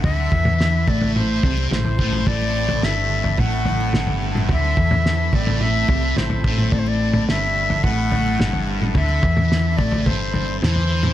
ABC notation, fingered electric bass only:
X:1
M:4/4
L:1/8
Q:1/4=108
K:Ador
V:1 name="Fingered electric bass" clef=bass
D,, E,,2 A,,,2 C,, A,,, A,,, | A,,,2 G,,,2 A,,,2 G,,,2 | D,, E,,2 A,,,2 C,, A,,, A,,, | A,,,2 G,,,2 A,,,2 G,,,2 |
D,, E,,2 A,,, G,,,2 E,,2 |]